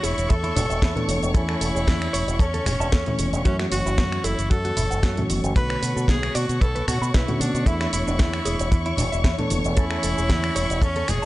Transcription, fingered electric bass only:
0.04 E1
0.17 E1
0.30 E2
0.56 E1
0.70 E1
0.82 E2
1.08 E1
1.23 E1
1.34 E2
1.61 E1
1.75 E1
1.88 E2
2.13 E1
2.27 E1
2.40 E2
2.66 E1
2.80 E1
2.93 E2
3.19 E1
3.33 E1
3.46 F#2
3.72 F#1
3.86 F#1
3.98 F#2
4.24 F#1
4.38 F#1
4.51 F#2
4.77 F#1
4.91 F#1
5.03 F#2
5.30 F#1
5.44 F#1
5.56 B1
5.82 B2
5.97 B2
6.08 B1
6.35 B2
6.49 B2
6.61 B1
6.88 B2
7.01 B2
7.14 B1
7.40 B2
7.54 B2
7.66 E2
7.93 E1
8.08 E1
8.20 E2
8.45 E1
8.60 E1
8.72 E2
8.98 E1
9.13 E1
9.24 E2
9.51 E1
9.65 E1
9.77 E2
10.04 E1
10.18 E1
10.30 E2
10.56 E1
10.70 E1
10.81 E2
11.09 E1

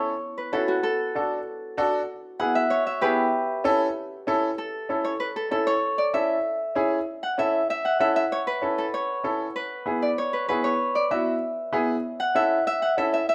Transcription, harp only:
Already playing: B3 E4 C#5
0.38 B4
0.53 A4
0.68 F#4
0.83 A4
2.40 F#5
2.55 E5
2.70 C#5
2.87 E5
3.01 G4 B4
4.58 A4
5.04 C#5
5.20 B4
5.36 A4
5.51 A4
5.67 C#5
5.98 D5
6.14 E5
7.23 F#5
7.39 E5
7.70 E5
7.85 F#5
8.00 E5
8.16 E5
8.32 C#5
8.47 B4
8.78 A4
8.94 C#5
9.56 B4
10.02 D5
10.18 C#5
10.33 B4
10.48 B4
10.64 C#5
10.95 D5
11.11 E5
12.20 F#5
12.36 E5
12.67 E5
12.82 F#5
12.98 E5
13.14 E5
13.29 E5

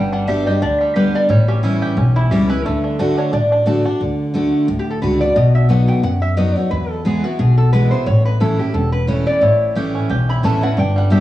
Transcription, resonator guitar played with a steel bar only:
Already playing: G5
0.13 F#5
0.28 E5
0.47 D#5
0.62 D5
0.81 G4
0.96 B4
1.15 D5
1.30 C#5
1.48 G4
2.16 E4
2.31 G4
2.49 B4
2.65 A4
3.18 C#5
3.33 D5
4.79 G4
4.90 A4
5.02 B4
5.21 D5
5.36 D#5
5.55 E5
5.70 F#5
5.88 G5
6.04 F#5
6.22 E5
6.37 D#5
6.56 C#5
6.71 B4
6.90 A4
7.06 G#4
7.24 F#4
7.39 G#4
7.58 A4
7.73 B4
7.91 C5
8.07 C#5
8.25 B4
8.41 A4
8.59 G4
8.74 A4
8.93 B4
9.09 C#5
9.27 D5
9.43 C#5
10.30 B5
10.45 A5
10.63 F#5
10.79 G5
10.98 F#5
11.12 E5

